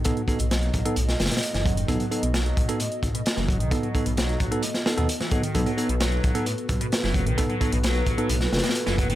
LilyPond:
<<
  \new Staff \with { instrumentName = "Analog synth pad" } { \time 4/4 \key c \lydian \tempo 4 = 131 << { dis''1~ | dis''1~ | dis''1 | b'1~ |
b'1 | } \\ { <b fis' a'>1~ | <b fis' a'>1~ | <b fis' a'>1~ | <b fis' a'>1~ |
<b fis' a'>1 | } >> }
  \new Staff \with { instrumentName = "Tine electric piano" } { \time 4/4 \key c \lydian <b dis' a'>16 r16 <b dis' a'>16 r4 <b dis' a'>16 r2 | <b dis' a'>16 r16 <b dis' a'>16 r4 <b dis' a'>16 r2 | <b dis' a'>16 r16 <b dis' a'>16 r4 <b dis' a'>16 r8 <b dis' a'>16 <b dis' a'>16 r8 <b dis' a'>16 r16 | <b dis' a'>16 r16 <b dis' a'>16 r4 <b dis' a'>16 r2 |
<b dis' a'>16 r16 <b dis' a'>16 r4 <b dis' a'>16 r2 | }
  \new Staff \with { instrumentName = "Distorted electric guitar" } { \clef bass \time 4/4 \key c \lydian b,16 fis8 b,16 fis4 a,16 r8 b,16 r16 e16 fis16 dis16 | b,16 fis8 b,16 fis4 a,16 r8 b,16 r16 e16 fis16 dis16 | b,16 fis8 b,16 fis4 a,16 r8 b,16 r16 e16 fis16 dis16 | b,16 fis8 b,16 fis4 a,16 r8 b,16 r16 e16 fis16 dis16 |
b,16 fis8 b,16 fis4 a,16 r8 b,16 r16 e16 fis16 dis16 | }
  \new Staff \with { instrumentName = "Detuned saw bass" } { \clef bass \time 4/4 \key c \lydian r8. b,,8. b,,16 r16 b,,8 fis,,16 r8 fis,,8. | b,,16 r8 b,,8. b,,16 r8. b,,16 r8 fis,,8 b,,16 | r8. b,,8. b,,16 r4 dis,16 r4 | b,,16 r8 b,,8. b,,16 r8. b,,16 r8 fis,,8 b,,16 |
r8. b,,8. b,,16 r16 b,,8 fis,,16 r8 fis,,8. | }
  \new DrumStaff \with { instrumentName = "Drums" } \drummode { \time 4/4 <hh bd>16 hh16 <hh bd>16 hh16 <hh sn>16 hh16 <hh bd>16 hh16 hh16 <hh sn>16 <hh sn>32 <hh sn>32 <hh sn>32 <hh sn>32 hh16 <hh sn>16 <hh bd>16 hh16 | <hh bd>16 hh16 hh16 hh16 <hh sn>16 hh16 <hh bd>16 hh16 hh16 hh16 <hh bd>16 hh16 <hh sn>16 <hh sn>16 <hh bd>16 hh16 | <hh bd>16 hh16 <hh bd>16 hh16 <hh sn>16 hh16 <hh bd>16 hh16 hh16 <hh sn>16 <hh sn>16 hh16 hh16 <hh sn>16 <hh bd>16 hh16 | <hh bd>16 hh16 hh16 hh16 <hh sn>16 hh16 <hh bd>16 hh16 hh16 hh16 <hh bd>16 hh16 <hh sn>16 <hh sn>16 <hh bd>16 hh16 |
<hh bd>16 hh16 <hh bd>16 hh16 <hh sn>16 hh16 <hh bd>16 hh16 hh16 <hh sn>16 <hh sn>32 <hh sn>32 <hh sn>32 <hh sn>32 hh16 <hh sn>16 <hh bd>16 hh16 | }
>>